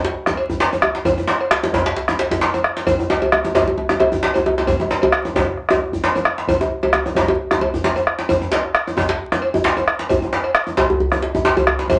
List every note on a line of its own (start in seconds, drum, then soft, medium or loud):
0.05 djembe slap medium
0.26 bombo rim medium
0.26 djembe slap medium
0.26 djembe tone medium
0.37 cowbell medium
0.49 bombo low medium
0.49 djembe bass medium
0.60 djembe slap medium
0.73 cowbell soft
0.73 djembe tone medium
0.82 bombo rim loud
0.82 djembe tone medium
0.95 djembe slap medium
1.05 bombo low loud
1.05 cowbell medium
1.05 djembe bass medium
1.18 djembe tone medium
1.27 djembe slap medium
1.40 bombo rim soft
1.40 cowbell soft
1.51 bombo rim loud
1.51 djembe slap loud
1.63 djembe slap medium
1.63 djembe tone medium
1.73 bombo rim soft
1.73 bombo low medium
1.73 cowbell soft
1.73 djembe slap medium
1.73 djembe bass medium
1.86 djembe slap loud
1.96 djembe slap medium
2.08 bombo rim medium
2.08 djembe slap medium
2.08 djembe tone medium
2.19 cowbell medium
2.19 djembe slap loud
2.30 bombo low medium
2.30 djembe slap medium
2.30 djembe bass medium
2.41 djembe slap medium
2.54 cowbell medium
2.54 djembe tone medium
2.64 bombo rim medium
2.77 djembe slap medium
2.87 bombo low medium
2.87 cowbell medium
2.87 djembe bass medium
2.99 djembe tone medium
3.10 djembe slap medium
3.10 djembe tone loud
3.22 bombo rim soft
3.22 cowbell soft
3.22 djembe tone medium
3.32 bombo rim loud
3.32 djembe tone medium
3.44 djembe tone medium
3.55 bombo rim soft
3.55 bombo low medium
3.55 cowbell medium
3.55 djembe slap medium
3.55 djembe tone loud
3.55 djembe bass medium
3.68 djembe tone medium
3.78 djembe tone medium
3.89 bombo rim medium
3.89 djembe slap medium
3.89 djembe tone medium
4.00 cowbell medium
4.00 djembe tone loud
4.12 bombo low medium
4.12 djembe tone medium
4.12 djembe bass medium
4.23 djembe slap medium
4.23 djembe tone medium
4.34 cowbell medium
4.34 djembe tone medium
4.46 djembe tone loud
4.58 djembe slap medium
4.58 djembe tone medium
4.67 bombo low loud
4.67 cowbell medium
4.67 djembe slap soft
4.67 djembe tone medium
4.67 djembe bass medium
4.80 djembe slap soft
4.80 djembe tone medium
4.91 djembe slap medium
5.02 cowbell medium
5.02 djembe tone loud
5.12 bombo rim loud
5.12 djembe slap soft
5.25 djembe tone medium
5.35 bombo low medium
5.35 cowbell soft
5.35 djembe slap medium
5.35 djembe tone medium
5.35 djembe bass medium
5.47 bombo rim soft
5.58 bombo rim soft
5.69 bombo rim medium
5.69 djembe slap medium
5.69 djembe tone medium
5.69 djembe tone loud
5.92 bombo low medium
5.92 djembe bass medium
6.04 djembe slap medium
6.15 cowbell soft
6.15 djembe slap soft
6.15 djembe tone medium
6.25 bombo rim medium
6.25 djembe slap soft
6.38 djembe slap medium
6.48 bombo low loud
6.48 cowbell medium
6.48 djembe bass medium
6.61 djembe tone medium
6.61 djembe tone loud
6.83 bombo rim soft
6.83 cowbell soft
6.83 djembe tone loud
6.93 bombo rim loud
6.93 djembe tone loud
7.06 djembe tone medium
7.15 bombo rim soft
7.15 bombo low loud
7.15 cowbell soft
7.15 djembe slap medium
7.15 djembe tone medium
7.15 djembe bass medium
7.28 djembe tone loud
7.51 bombo rim medium
7.51 djembe slap medium
7.51 djembe tone medium
7.61 cowbell medium
7.61 djembe tone loud
7.73 bombo low medium
7.73 djembe bass medium
7.84 djembe slap medium
7.84 djembe tone medium
7.96 cowbell medium
7.96 djembe tone medium
8.07 bombo rim medium
8.19 djembe slap medium
8.29 bombo low medium
8.29 cowbell medium
8.29 djembe bass medium
8.42 djembe tone medium
8.52 djembe slap loud
8.52 djembe slap medium
8.64 bombo rim soft
8.75 bombo rim loud
8.87 djembe tone medium
8.97 bombo rim soft
8.97 bombo low medium
8.97 djembe slap medium
8.97 djembe tone medium
8.97 djembe bass medium
9.09 djembe slap loud
9.32 bombo rim medium
9.32 djembe slap medium
9.32 djembe tone medium
9.42 cowbell medium
9.54 bombo low medium
9.54 djembe tone medium
9.54 djembe bass medium
9.64 djembe slap loud
9.64 djembe slap medium
9.77 cowbell medium
9.77 djembe tone medium
9.88 bombo rim medium
9.99 djembe slap medium
10.09 bombo low loud
10.09 cowbell medium
10.09 djembe tone medium
10.09 djembe bass medium
10.22 djembe tone medium
10.33 djembe slap medium
10.44 bombo rim soft
10.44 cowbell medium
10.55 bombo rim loud
10.67 djembe tone medium
10.77 bombo rim soft
10.77 bombo low loud
10.77 cowbell medium
10.77 djembe slap medium
10.77 djembe tone loud
10.90 djembe bass medium
11.00 djembe bass medium
11.12 bombo rim medium
11.12 djembe tone medium
11.22 djembe slap medium
11.35 bombo low medium
11.35 djembe tone medium
11.35 djembe bass medium
11.45 djembe slap loud
11.45 djembe tone loud
11.57 cowbell medium
11.57 djembe tone medium
11.57 djembe bass medium
11.67 bombo rim loud
11.67 djembe bass medium
11.79 djembe slap medium
11.90 bombo low loud
11.90 cowbell medium
11.90 djembe tone loud
11.90 djembe bass medium